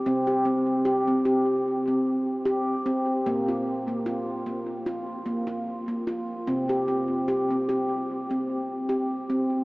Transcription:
X:1
M:4/4
L:1/16
Q:"Swing 16ths" 1/4=75
K:Bbmix
V:1 name="Handpan"
C G C2 G C G2 z C2 z G2 C2 | B, F2 B, F2 B,2 F2 B, F2 B, F2 | C G C2 G C G2 z C2 z G2 C2 |]
V:2 name="Handpan" clef=bass
C,16 | B,,16 | C,16 |]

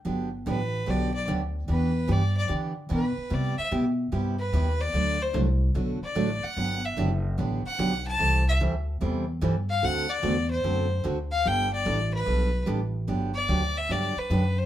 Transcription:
X:1
M:4/4
L:1/8
Q:"Swing" 1/4=147
K:G
V:1 name="Fiddle"
z2 B2 d d z2 | B2 d d z2 B2 | d e z3 B2 d- | d c z3 d2 f- |
f e z3 f2 a- | a e z4 z =f | f d2 c3 z =f | g d2 B3 z2 |
z d2 e d B2 c |]
V:2 name="Steel-string acoustic guitar"
[D,F,B,DG] z [D,F,B,DG] z [D,F,B,DG] z [D,F,B,DG] z | [E,B,DG] z [E,B,DG] z [E,B,DG] z [E,B,DG] z | [C,G,B,EG] z [C,G,B,EG] z [C,G,B,EG] z [C,G,B,EG] z | [D,F,A,DF] z [D,F,A,DF] z [D,F,A,DF] z [D,F,A,DF] z |
[D,F,B,DG] z [D,F,B,DG] z [D,F,B,DG] z [D,F,B,DG] z | [C,E,G,CEA] z [C,E,G,CEA] z [C,E,G,CEA] z [C,E,G,CEA] z | [D,A,CFA] z [D,A,CFA] z [D,A,CFA] z [D,A,CFA] z | [G,B,DA] z [G,B,DA] z [G,B,DA] z [G,B,DA] z |
[D,F,B,DG] z [D,F,B,DG] z [D,F,B,DG] z [D,F,B,DG] z |]
V:3 name="Upright bass" clef=bass
G,,,2 A,,,2 B,,,2 D,,2 | E,,2 G,,2 D,2 B,, z | C, z B,,2 G,,2 _E,,2 | D,,2 C,,2 B,,, z A,,, z |
G,,,2 F,,,2 A,,, z B,,,2 | C,,2 D,,2 E,,2 G,,2 | D,,2 E,,2 F,,2 D,,2 | G,,,2 A,,,2 B,,,2 A,,,2 |
G,,,2 D,,2 G,, z F,,2 |]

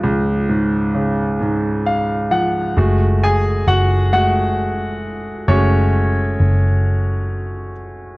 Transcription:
X:1
M:6/8
L:1/8
Q:3/8=44
K:F#m
V:1 name="Grand piano"
z4 ^e f | z [Gg] [Ff] [Ff]3 | [Cc]4- [Cc] z |]
V:2 name="Grand piano" clef=bass
[C,,G,,^E,] G,, C, G,,2 E, | [G,A,F]3 [G,A,] z2 | [G,A,F] z4 z |]
V:3 name="Picked electric bass" clef=bass
z6 | F,,,2 F,,,4 | F,,,2 F,,,4 |]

